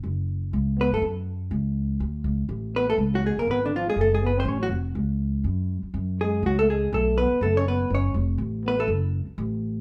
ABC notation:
X:1
M:4/4
L:1/8
Q:"Swing" 1/4=244
K:F#m
V:1 name="Hollow-body jazz guitar"
z6 B A | z8 | z6 B A | z F G ^A B D ^E G |
A G B ^B c F z2 | z8 | z2 G2 F A G2 | A2 B2 A c B2 |
c2 z4 B A | z8 |]
V:2 name="Trombone"
z6 B, A, | z8 | z6 B, A, | z F, G, ^A, B, D, ^E, G, |
A, G, B, ^B, C F, z2 | z8 | z2 G,2 F, A, G,2 | A,2 B,2 A, C B,2 |
C2 z4 B, A, | z8 |]
V:3 name="Upright bass" clef=bass
F,,,4 C,,3 =G,, | F,,4 C,,4 | D,,2 C,,2 A,,,4 | C,,3 B,,, G,,,4 |
F,,,4 A,,,2 ^E,,,2 | C,,4 F,,3 z | F,,4 C,,4 | B,,,3 z F,,,4 |
F,,,2 ^E,,,2 A,,,4 | F,,,3 z A,,,4 |]